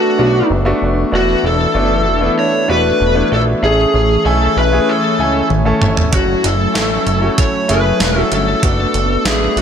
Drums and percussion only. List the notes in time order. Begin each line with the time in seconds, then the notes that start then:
5.50 high tom
5.82 mid tom
5.97 floor tom
6.13 kick, closed hi-hat
6.44 closed hi-hat
6.75 snare, closed hi-hat
7.07 closed hi-hat
7.38 kick, closed hi-hat
7.69 closed hi-hat
8.00 snare, closed hi-hat
8.32 closed hi-hat
8.63 kick, closed hi-hat
8.94 closed hi-hat
9.25 snare, closed hi-hat
9.57 closed hi-hat